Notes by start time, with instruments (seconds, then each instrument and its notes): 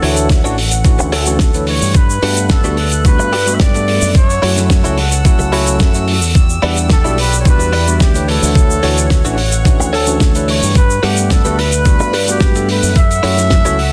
Already playing: trumpet section A4, string section F#5
0.02 fingered electric bass D2, tine electric piano E3 A3 D4 F#4 C#5, clean electric guitar D4 F#4 A4 C#5, open hi-hat
0.17 closed hi-hat, shaker
0.29 kick, snare, closed hi-hat, shaker
0.44 fingered electric bass A1, tine electric piano E3 A3 C#4 D4 F#4, clean electric guitar D4 F#4 A4 C#5, shaker
0.58 open hi-hat
0.71 muted clean electric guitar stroke, closed hi-hat, shaker
0.85 tine electric piano E3 A3 C#4 D4 F#4, kick, closed hi-hat, shaker
0.99 fingered electric bass D2, muted clean electric guitar stroke, shaker
1.12 clean electric guitar D4 F#4 A4 C#5, trumpet section A4, open hi-hat
1.26 tine electric piano E3 A3 C#4 D4 F#4, closed hi-hat, shaker
1.39 fingered electric bass D2, kick, snare, closed hi-hat, shaker
1.54 tine electric piano E3 A3 D4 B4 C#5, closed hi-hat, shaker
1.67 trumpet section C#5, open hi-hat
1.82 fingered electric bass G2, shaker
1.94 trumpet section B4, string section B4 F#6, kick, closed hi-hat, shaker
2.10 shaker
2.22 fingered electric bass G2, tine electric piano G3 A3 B3 D4 F#5, clean electric guitar D4 F#4 G4 B4, open hi-hat
2.37 closed hi-hat, shaker
2.49 trumpet section A4, kick, snare, closed hi-hat, shaker
2.64 fingered electric bass D2, tine electric piano G3 A3 B3 D4 F#4, clean electric guitar D4 F#4 G4 B4, shaker
2.77 open hi-hat
2.92 muted clean electric guitar stroke, closed hi-hat, shaker
3.05 tine electric piano G3 A3 B3 D4 F#4, trumpet section B4, kick, closed hi-hat, shaker
3.19 fingered electric bass G2, muted clean electric guitar stroke, shaker
3.33 clean electric guitar D4 F#4 G4 A4, open hi-hat
3.46 tine electric piano G3 A3 B3 D4 F#4, closed hi-hat, shaker
3.53 trumpet section E5
3.60 fingered electric bass G2, trumpet section D5, kick, snare, closed hi-hat, shaker
3.74 tine electric piano G3 A3 B3 D4 A4, closed hi-hat, shaker
3.88 open hi-hat
4.02 fingered electric bass F#2, shaker
4.15 string section A4 F#5 E6, trumpet section C#5, kick, closed hi-hat, shaker
4.30 closed hi-hat, shaker
4.42 fingered electric bass F#2, tine electric piano F#3 A3 C#4 E4 F#4, clean electric guitar E4 F#4 A4 C#5, open hi-hat
4.57 snare, closed hi-hat, shaker
4.70 muted clean electric guitar stroke, kick, snare, closed hi-hat, shaker
4.84 fingered electric bass C#2, tine electric piano F#3 A3 C#4 E4 F#4, clean electric guitar E4 F#4 A4 C#5, closed hi-hat, shaker
4.98 open hi-hat
5.11 muted clean electric guitar stroke, closed hi-hat, shaker
5.25 tine electric piano F#3 A3 C#4 E4 F#4, kick, closed hi-hat, shaker
5.39 fingered electric bass C#2, muted clean electric guitar stroke, shaker
5.52 tine electric piano F#3 A3 C#4 E4 F#4, clean electric guitar E4 F#4 A4 C#5, open hi-hat
5.67 closed hi-hat, shaker
5.80 kick, snare, closed hi-hat, shaker
5.94 tine electric piano F#3 A3 C#4 E4 F#4, closed hi-hat, shaker
6.08 open hi-hat
6.22 fingered electric bass E2, shaker
6.35 string section G4 D5, kick, closed hi-hat, shaker
6.50 shaker
6.62 fingered electric bass E2, tine electric piano G3 B3 D4 E4 F#5, clean electric guitar E4 G4 B4 D5, open hi-hat
6.76 closed hi-hat, shaker
6.90 trumpet section A4, muted clean electric guitar stroke, kick, snare, closed hi-hat, shaker
7.04 fingered electric bass B1, tine electric piano G3 B3 D4 E4 F#4, clean electric guitar E4 G4 B4 D5, shaker
7.18 trumpet section B4, open hi-hat
7.32 muted clean electric guitar stroke, closed hi-hat, shaker
7.39 trumpet section C#5
7.45 tine electric piano G3 B3 D4 E4 F#4, trumpet section B4, kick, closed hi-hat, shaker
7.59 fingered electric bass E2, muted clean electric guitar stroke, shaker
7.73 clean electric guitar E4 G4 B4 D5, open hi-hat
7.87 tine electric piano G3 B3 D4 E4 F#4, closed hi-hat, shaker
8.00 fingered electric bass D2, trumpet section G4, kick, snare, closed hi-hat, shaker
8.14 tine electric piano E3 A3 D4 B4 C#5, closed hi-hat, shaker
8.28 clean electric guitar D4 F#4 A4 C#5, trumpet section A4, string section C#5 F#5, open hi-hat
8.43 fingered electric bass D2, shaker
8.55 kick, shaker
8.70 shaker
8.83 fingered electric bass D2, tine electric piano E3 A3 D4 F#4 C#5, clean electric guitar D4 F#4 A4 C#5, open hi-hat
8.98 closed hi-hat, shaker
9.10 kick, snare, closed hi-hat, shaker
9.24 fingered electric bass A1, tine electric piano E3 A3 C#4 D4 F#4, clean electric guitar D4 F#4 A4 C#5, shaker
9.38 open hi-hat
9.52 muted clean electric guitar stroke, closed hi-hat, shaker
9.65 tine electric piano E3 A3 C#4 D4 F#4, kick, closed hi-hat, shaker
9.80 fingered electric bass D2, muted clean electric guitar stroke, shaker
9.93 clean electric guitar D4 F#4 A4 C#5, trumpet section A4, open hi-hat
10.07 tine electric piano E3 A3 C#4 D4 F#4, closed hi-hat, shaker
10.20 fingered electric bass D2, kick, snare, closed hi-hat, shaker
10.35 tine electric piano E3 A3 D4 B4 C#5, closed hi-hat, shaker
10.48 trumpet section C#5, open hi-hat
10.62 fingered electric bass G2, shaker
10.75 trumpet section B4, string section B4 F#6, kick, closed hi-hat, shaker
10.90 shaker
11.03 fingered electric bass G2, tine electric piano G3 A3 B3 D4 F#5, clean electric guitar D4 F#4 G4 B4, trumpet section G4, open hi-hat
11.17 closed hi-hat, shaker
11.30 trumpet section A4, kick, snare, closed hi-hat, shaker
11.45 fingered electric bass D2, tine electric piano G3 A3 B3 D4 F#4, clean electric guitar D4 F#4 G4 B4, shaker
11.59 trumpet section B4, open hi-hat
11.72 muted clean electric guitar stroke, closed hi-hat, shaker
11.86 tine electric piano G3 A3 B3 D4 F#4, kick, closed hi-hat, shaker
12.00 fingered electric bass G2, muted clean electric guitar stroke, shaker
12.13 clean electric guitar D4 F#4 G4 B4, open hi-hat
12.27 tine electric piano G3 A3 B3 D4 F#4, trumpet section G4, closed hi-hat, shaker
12.40 fingered electric bass G2, kick, snare, closed hi-hat, shaker
12.55 tine electric piano G3 A3 B3 D4 A4, closed hi-hat, shaker
12.69 trumpet section B4, open hi-hat
12.83 fingered electric bass F#2, shaker
12.96 string section A4 F#5 E6, trumpet section E5, kick, closed hi-hat, shaker
13.11 closed hi-hat, shaker
13.23 fingered electric bass F#2, tine electric piano F#3 A3 C#4 E4 F#4, clean electric guitar E4 F#4 A4 C#5, open hi-hat
13.37 snare, closed hi-hat, shaker
13.50 kick, snare, closed hi-hat, shaker
13.65 fingered electric bass C#2, tine electric piano F#3 A3 C#4 E4 F#4, clean electric guitar E4 F#4 A4 C#5, closed hi-hat, shaker
13.79 open hi-hat